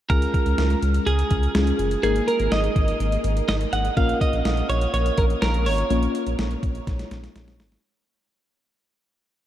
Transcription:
0.10 0.27 C#2 loud
0.10 1.52 G#3 medium
0.10 1.52 C#4 medium
0.10 1.52 F4 medium
0.10 1.52 G#4 medium
0.10 0.78 A#4 loud
0.10 kick loud
0.10 closed hi-hat medium
0.22 closed hi-hat medium
0.34 kick medium
0.34 closed hi-hat medium
0.46 0.55 C#2 loud
0.46 closed hi-hat soft
0.58 0.75 C#2 loud
0.58 snare loud
0.58 closed hi-hat medium
0.70 closed hi-hat soft
0.82 0.99 C#2 loud
0.82 closed hi-hat medium
0.94 closed hi-hat medium
1.07 1.24 C#2 loud
1.07 2.02 G#4 medium
1.07 closed hi-hat medium
1.19 closed hi-hat medium
1.31 1.48 C#2 loud
1.31 kick medium
1.31 closed hi-hat medium
1.43 closed hi-hat medium
1.55 1.72 C#2 loud
1.55 2.03 G#3 soft
1.55 2.03 C#4 soft
1.55 2.03 F4 soft
1.55 2.02 G#4 medium
1.55 snare loud
1.55 closed hi-hat medium
1.67 closed hi-hat medium
1.79 1.96 F#1 medium
1.79 closed hi-hat medium
1.91 closed hi-hat medium
2.03 2.20 G#1 loud
2.03 3.93 A#3 medium
2.03 3.93 D#4 medium
2.03 3.93 G#4 medium
2.03 2.26 G#4 medium
2.03 3.93 A#4 medium
2.03 closed hi-hat medium
2.16 closed hi-hat medium
2.28 2.53 A#4 medium
2.28 closed hi-hat medium
2.40 2.48 G#1 medium
2.40 closed hi-hat soft
2.52 2.69 G#1 loud
2.52 3.20 D#5 medium
2.52 snare loud
2.52 closed hi-hat medium
2.64 closed hi-hat soft
2.76 2.93 G#1 loud
2.76 kick loud
2.76 closed hi-hat medium
2.88 closed hi-hat medium
3.00 3.17 G#1 loud
3.00 closed hi-hat medium
3.12 closed hi-hat medium
3.24 3.41 G#1 loud
3.24 closed hi-hat medium
3.37 closed hi-hat medium
3.48 3.66 G#1 loud
3.48 3.55 D#5 loud
3.48 snare loud
3.48 closed hi-hat medium
3.61 closed hi-hat medium
3.73 3.90 G#1 medium
3.73 3.97 F#5 loud
3.73 closed hi-hat medium
3.85 closed hi-hat medium
3.97 4.14 A#1 loud
3.97 5.87 A#3 medium
3.97 5.87 C#4 medium
3.97 5.87 F4 medium
3.97 5.87 A#4 medium
3.97 4.21 F5 loud
3.97 kick loud
3.97 closed hi-hat medium
4.09 closed hi-hat medium
4.21 4.69 D#5 loud
4.21 kick loud
4.21 closed hi-hat medium
4.33 4.42 A#1 loud
4.33 closed hi-hat soft
4.45 4.62 A#1 medium
4.45 snare loud
4.45 closed hi-hat medium
4.57 closed hi-hat soft
4.69 4.86 A#1 loud
4.69 4.92 C#5 medium
4.69 closed hi-hat medium
4.81 closed hi-hat medium
4.94 5.11 A#1 loud
4.94 5.19 C#5 medium
4.94 closed hi-hat medium
5.06 closed hi-hat medium
5.18 5.35 A#1 medium
5.18 5.25 A#4 medium
5.18 kick medium
5.18 closed hi-hat medium
5.30 closed hi-hat medium
5.42 5.68 A#1 loud
5.42 5.67 A#4 medium
5.42 snare loud
5.42 closed hi-hat medium
5.54 closed hi-hat medium
5.66 5.83 G#1 medium
5.66 6.11 C#5 medium
5.66 open hi-hat medium
5.78 closed hi-hat medium
5.90 6.07 A#1 loud
5.90 7.80 A#3 medium
5.90 7.80 C#4 medium
5.90 7.80 F4 medium
5.90 7.80 C#5 medium
5.90 closed hi-hat medium
6.03 closed hi-hat medium
6.15 closed hi-hat medium
6.27 6.35 A#1 medium
6.27 closed hi-hat medium
6.39 6.56 A#1 loud
6.39 snare loud
6.39 closed hi-hat medium
6.51 closed hi-hat soft
6.63 6.80 A#1 loud
6.63 kick loud
6.63 closed hi-hat medium
6.75 closed hi-hat medium
6.87 7.04 A#1 loud
6.87 kick loud
6.87 snare medium
6.87 closed hi-hat medium
6.99 snare medium
6.99 closed hi-hat medium
7.11 7.28 A#1 medium
7.11 snare medium
7.11 closed hi-hat medium
7.24 snare medium
7.24 closed hi-hat medium
7.36 7.61 A#1 loud
7.36 snare medium
7.36 closed hi-hat medium
7.48 snare medium
7.48 closed hi-hat medium
7.60 7.77 G#1 medium
7.60 snare loud
7.60 open hi-hat medium
7.72 snare medium
7.72 closed hi-hat medium

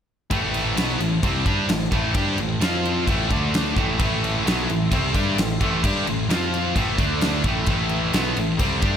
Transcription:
0.30 0.74 A1 medium
0.30 0.76 A2 medium
0.30 0.76 E3 medium
0.30 0.77 A3 loud
0.30 2.59 E4 medium
0.30 3.05 C5 medium
0.30 2.59 A5 medium
0.30 kick loud
0.30 crash medium
0.54 crash medium
0.77 0.98 B1 medium
0.77 0.99 B2 loud
0.77 0.99 F#3 medium
0.77 1.00 B3 loud
0.77 snare loud
0.77 crash medium
0.99 1.21 A1 medium
0.99 1.18 A2 medium
0.99 1.18 E3 medium
0.99 crash medium
1.23 1.44 C2 medium
1.23 1.45 C3 medium
1.23 1.44 G3 medium
1.23 1.46 C4 loud
1.23 kick loud
1.23 crash medium
1.46 1.67 G2 medium
1.46 1.68 G3 medium
1.46 1.69 D4 medium
1.46 1.69 G4 loud
1.46 kick loud
1.46 crash medium
1.69 1.90 A1 medium
1.69 1.88 A2 medium
1.69 1.88 E3 medium
1.69 snare loud
1.69 crash medium
1.92 2.13 A1 loud
1.92 2.15 A2 medium
1.92 2.15 E3 medium
1.92 2.15 A3 loud
1.92 kick loud
1.92 crash medium
2.14 2.37 G2 medium
2.14 2.38 G3 medium
2.14 2.39 D4 loud
2.14 2.39 G4 medium
2.14 kick loud
2.14 crash medium
2.38 2.59 A1 medium
2.38 2.58 A2 medium
2.38 2.58 E3 medium
2.38 crash medium
2.61 3.04 F2 medium
2.61 3.08 F3 medium
2.61 3.08 C4 medium
2.61 3.07 F4 medium
2.61 3.08 F4 loud
2.61 3.30 C6 medium
2.61 snare loud
2.61 crash medium
2.85 crash medium
3.05 3.29 A1 loud
3.05 3.28 A2 loud
3.05 kick loud
3.05 crash medium
3.09 3.31 A2 medium
3.09 3.31 E3 medium
3.09 3.31 A3 loud
3.09 6.29 A4 medium
3.09 3.32 E5 medium
3.29 3.73 D2 loud
3.29 3.77 D3 medium
3.29 3.75 A3 medium
3.29 3.77 D5 medium
3.29 3.77 D6 medium
3.29 kick loud
3.29 crash medium
3.33 3.77 A3 medium
3.33 3.77 D4 loud
3.54 snare loud
3.54 crash medium
3.77 3.98 A1 medium
3.77 4.00 A2 medium
3.77 4.00 E3 medium
3.77 4.00 A3 medium
3.77 6.29 E5 medium
3.77 6.97 C6 medium
3.77 kick loud
3.77 crash medium
4.00 4.43 A1 medium
4.00 4.46 A2 medium
4.00 4.46 E3 medium
4.00 4.46 A3 loud
4.00 kick loud
4.00 crash medium
4.24 crash medium
4.45 4.67 B1 medium
4.45 4.69 B2 medium
4.45 4.69 F#3 loud
4.45 4.69 B3 loud
4.45 snare loud
4.45 crash medium
4.69 4.91 A1 medium
4.69 4.89 A2 medium
4.69 4.89 E3 medium
4.69 crash medium
4.92 5.14 C2 loud
4.92 5.15 C3 medium
4.92 5.13 G3 medium
4.92 5.15 C4 loud
4.92 kick loud
4.92 crash medium
5.14 5.36 G2 loud
5.14 5.37 G3 medium
5.14 5.38 D4 loud
5.14 5.38 G4 medium
5.14 kick loud
5.14 crash medium
5.38 5.59 A1 medium
5.38 5.56 A2 medium
5.38 5.57 E3 medium
5.38 snare loud
5.38 crash medium
5.61 5.82 A1 loud
5.61 5.83 A2 medium
5.61 5.83 E3 medium
5.61 5.84 A3 loud
5.61 kick loud
5.61 crash medium
5.84 6.05 G2 loud
5.84 6.07 G3 medium
5.84 6.07 D4 loud
5.84 6.07 G4 loud
5.84 kick loud
5.84 crash medium
6.06 6.28 A1 medium
6.06 6.25 A2 medium
6.06 6.26 E3 medium
6.06 crash medium
6.29 6.72 F2 loud
6.29 6.75 F3 loud
6.29 6.76 C4 loud
6.29 6.76 F4 medium
6.29 6.76 F4 loud
6.29 6.77 C5 medium
6.29 snare loud
6.29 crash medium
6.54 crash medium
6.76 6.97 A1 medium
6.76 6.98 A2 medium
6.76 6.98 E3 loud
6.76 6.97 A3 loud
6.76 7.42 A4 medium
6.76 6.99 E5 medium
6.76 kick loud
6.76 crash medium
6.98 7.41 D2 medium
6.98 7.43 D3 medium
6.98 7.43 A3 loud
6.98 7.44 D4 medium
6.98 7.45 D5 medium
6.98 7.45 D6 medium
6.98 kick loud
6.98 crash medium
7.21 snare loud
7.21 crash medium
7.43 7.66 A1 medium
7.43 7.65 A2 medium
7.43 7.66 E3 medium
7.43 7.67 A3 medium
7.43 8.97 A4 medium
7.43 8.97 E5 medium
7.43 8.97 C6 medium
7.43 kick loud
7.43 crash medium
7.66 8.11 A1 medium
7.66 8.13 A2 loud
7.66 8.13 E3 loud
7.66 8.14 A3 medium
7.66 kick loud
7.66 crash medium
7.89 crash medium
8.13 8.35 B1 medium
8.13 8.35 B2 medium
8.13 8.35 F#3 loud
8.13 8.37 B3 loud
8.13 snare loud
8.13 crash medium
8.36 8.58 A1 medium
8.36 8.55 A2 medium
8.36 8.55 E3 medium
8.36 crash medium
8.57 8.81 C2 medium
8.57 8.81 C3 medium
8.57 8.80 G3 loud
8.57 8.81 C4 loud
8.57 kick loud
8.57 crash medium
8.81 8.97 G2 medium
8.81 8.97 G3 medium
8.81 8.97 D4 medium
8.81 8.97 G4 loud
8.81 kick loud
8.81 crash medium

